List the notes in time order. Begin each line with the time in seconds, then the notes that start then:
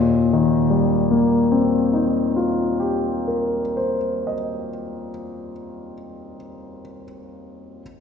Already playing: D#2 A#2 D#5
0.33 D#3
0.70 G3
1.11 A#3
1.52 C4
1.93 D#4
2.36 F4
2.80 G4
3.28 A#4
3.77 C5
4.27 D#5